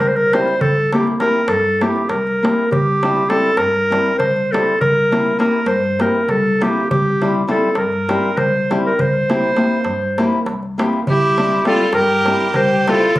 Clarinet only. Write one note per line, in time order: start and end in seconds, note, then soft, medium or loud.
0.08 0.18 C5 medium
0.16 0.35 A#4 medium
0.34 0.63 C5 medium
0.61 0.93 A4 medium
0.94 1.06 G4 medium
1.20 1.50 A#4 medium
1.49 1.84 A4 medium
1.82 2.11 G4 medium
2.09 2.71 A#4 medium
2.71 3.31 G4 medium
3.30 3.59 A4 medium
3.57 4.18 A#4 medium
4.18 4.53 C5 medium
4.52 4.80 A4 medium
4.80 5.35 A#4 medium
5.40 5.69 A#4 medium
5.67 6.04 C5 medium
6.02 6.31 A#4 medium
6.30 6.65 A4 medium
6.63 6.90 G4 medium
6.90 7.34 G4 medium
7.51 7.80 A4 medium
7.78 8.39 A#4 medium
8.38 8.71 C5 medium
8.86 9.03 A#4 medium
9.01 10.47 C5 medium
11.10 11.63 G4 medium
11.67 11.92 A4 medium
11.94 12.58 A#4 loud
12.56 12.91 C5 medium
12.90 13.17 A4 medium